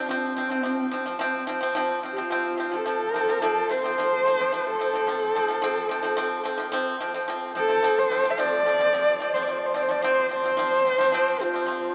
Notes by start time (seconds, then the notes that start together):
0.08 F3 C4
0.37 F3 C4
0.50 F3 C4
0.63 F3 C4
0.91 F3 C4
1.06 F3 C4
1.19 F3 C4
1.47 F3 C4
1.61 F3 C4
1.75 F3 C4
2.03 F3 C4
2.12 G4
2.16 F3 C4
2.20 F4
2.30 F3 C4
2.58 F3 C4
2.72 F3 C4
2.76 A4
2.86 F3 C4
3.14 F3 C4
3.28 F3 C4
3.42 F3 C4
3.69 F3 C4 C5
3.84 F3 C4
3.98 F3 C4
4.26 F3 C4
4.40 F3 C4
4.52 F3 C4
4.67 A4
4.79 F3 C4
4.93 F3 C4
5.07 F3 C4
5.35 F3 C4
5.48 F3 C4
5.62 F3 C4
5.89 F3 C4
6.03 F3 C4
6.17 F3 C4
6.44 F3 C4
6.58 F3 C4
6.72 F3 C4
7.00 F3 C4
7.14 F3 C4
7.28 F3 C4
7.55 F3 C4 A4
7.68 F3 C4
7.83 F3 C4
7.99 C5
8.10 F3 C4
8.24 F3 C4
8.30 F5
8.38 F3 C4 D5
8.66 F3 C4
8.79 F3 C4
8.93 F3 C4
9.20 F3 C4
9.33 F3 C4 C5
9.43 D5
9.47 F3 C4 C5
9.58 D5
9.66 C5
9.74 F3 C4 D5
9.83 C5
9.89 F3 C4 D5
10.01 F3 C4 C5
10.29 F3 C4
10.35 C5
10.43 F3 C4
10.57 F3 C4
10.85 F3 C4
10.98 F3 C4
11.12 F3 C4
11.40 F3 C4 F4
11.54 F3 C4
11.66 F3 C4